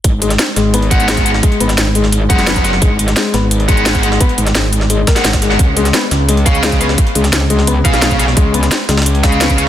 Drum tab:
HH |x---x-x-x---x---x-x-x-x-x-x-x---|x-x-x-x-x---x---x---x-x-x-x-x---|x---x-x-x---x---x-x-x-x-x-x-x---|x-x-x-x-x---x---x---x-x-x-x-x---|
SD |------o-o---o-----------o-----o-|------o-o-----o-------o-o---o-o-|------o-o---o-----------o-----o-|------o-o-----o-----o-o-o-o-o-o-|
BD |o-------------------o-----o-----|o-------------------o-----o-----|o-------------------o-----o-----|o-------------------o-----o-----|

HH |x---x-x-x---x---x-x-x-x-x-x-x---|x-x-x-x-x---x---x---x-x-x-x-x---|x---x-x-x---x-xxx-x-x-x-x-x-x---|
SD |------o-o---o-----------o-----o-|------o-o-----o-------o-o---o-o-|------o-o---o-oo----o---o-------|
BD |o-------------------o-----o-----|o-------------------o-----o-----|o-------------------o-----o-----|